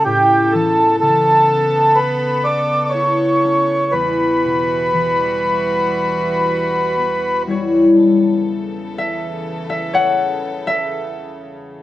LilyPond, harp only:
<<
  \new Staff \with { instrumentName = "Harp" } { \time 4/4 \key a \mixolydian \tempo 4 = 61 << { r1 | r2. r8 cis''8~ | cis''4 e''8. e''16 fis''8. e''4~ e''16 | } \\ { r1 | r2. r8 e'8~ | e'4. r8 cis''2 | } >> }
  \new Staff \with { instrumentName = "Harp" } { \clef bass \time 4/4 \key a \mixolydian a,8 e8 cis2 e'8 cis'8 | e,8 b,8 e2 b8 g8 | r1 | }
>>